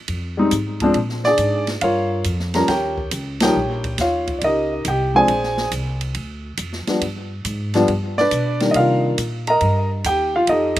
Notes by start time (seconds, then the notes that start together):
0.08 F2, kick, ride
0.37 G3 G#3 C4 D#4
0.51 G#2, kick, hi-hat pedal, ride
0.80 F3 G#3 C4 D4, kick, ride
0.94 A#2, ride
1.09 snare
1.24 D4 G#4 D5, snare
1.38 G#2, kick, hi-hat pedal, ride
1.67 snare, ride
1.81 G2 F4 A#4 C#5 F5, kick, ride
2.24 F2, hi-hat pedal, ride
2.39 snare
2.54 F3 G3 A#3 C#4 A#4 A#5, snare, ride
2.68 D#2 G4 A#4 C#5 G5, kick, snare, ride
2.98 kick
3.11 C#2, kick, hi-hat pedal, ride
3.40 F3 G3 A#3 D#4 C#5 G5, snare, ride
3.45 G4
3.55 A#1
3.84 kick, ride
3.98 D#2 F4 C#5 F5, kick, snare, hi-hat pedal, ride
4.27 kick, ride
4.39 C#2 D5, kick, ride
4.44 D#4 G4 A#4 D#5
4.85 C2 G5, kick, hi-hat pedal, ride
4.89 G4
5.14 F3 G#3 C4 D4 G#4 C5 D5 G#5
5.28 A#1, kick, ride
5.43 snare
5.57 snare
5.71 C2, kick, hi-hat pedal, ride
6.01 ride
6.15 D2, kick, ride
6.57 F2, kick, hi-hat pedal, ride
6.73 snare
6.87 F3 G3 B3 D4, muted upright bass stroke, snare, ride
7.01 G2, kick, ride
7.45 G#2, kick, hi-hat pedal, ride
7.74 F3 G3 B3 D4, snare, ride
7.88 G2, kick, ride
8.18 D4 B4 D5, snare
8.31 B2, kick, hi-hat pedal, ride
8.60 D#3 G3 A#3 D4, snare, ride
8.71 C3 D#5, kick, ride
8.76 F4 A#4 F5
9.18 A#2, kick, hi-hat pedal, ride
9.47 A#4 D#5 A#5, ride
9.61 G2, kick, ride
10.04 D#2 G4 G5, kick, hi-hat pedal, ride
10.36 F4 F5
10.47 F2 D#4 G4 A4 D#5, kick, ride
10.76 kick, ride